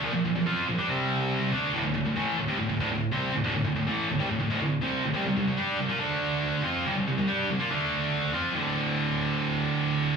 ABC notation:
X:1
M:4/4
L:1/16
Q:1/4=141
K:Dm
V:1 name="Distorted electric guitar" clef=bass
[B,,F,] [B,,F,] [B,,F,] [B,,F,] [F,CF]2 [B,,F,] [G,D] [C,G,C]6 [D,A,D]2 | [D,,A,,] [D,,A,,] [D,,A,,] [D,,A,,] [A,,E,A,]2 [D,,A,,] [C,G,] [D,,A,,] [D,,A,,] [D,,A,,] [D,,A,,]2 [C,G,C]2 [D,,A,,] | [D,,A,,] [D,,A,,] [D,,A,,] [D,,A,,] [A,,E,A,]2 [D,,A,,] [C,G,] [D,,A,,] [D,,A,,] [D,,A,,] [D,,A,,]2 [C,G,C]2 [D,,A,,] | [C,G,] [C,G,] [C,G,] [C,G,] [G,DG]2 [C,G,] [B,F] [D,A,D]6 [F,CF]2 |
[C,G,] [C,G,] [C,G,] [C,G,] [G,DG]2 [C,G,] [B,F] [D,A,D]6 [F,CF]2 | [D,,A,,D,]16 |]